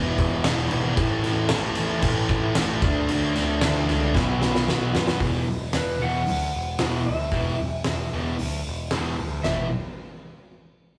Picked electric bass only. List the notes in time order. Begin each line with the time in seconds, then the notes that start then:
Already playing: E1
0.18 E1
0.45 E1
0.71 G#1
0.97 A1
1.24 A1
1.50 A1
1.76 A1
2.02 A1
2.30 A1
2.56 A1
2.82 D2
3.10 D2
3.36 D2
3.62 D2
3.89 C#2
4.15 B1
4.42 B1
4.69 B1
4.95 F#2
5.21 E1
5.48 E1
5.75 E1
6.01 E1
6.28 D2
6.54 E1
6.81 E1
7.07 D2
7.32 E1
7.59 E1
7.86 E1
8.13 E1
8.39 D2
8.67 E1
8.92 E1
9.19 D2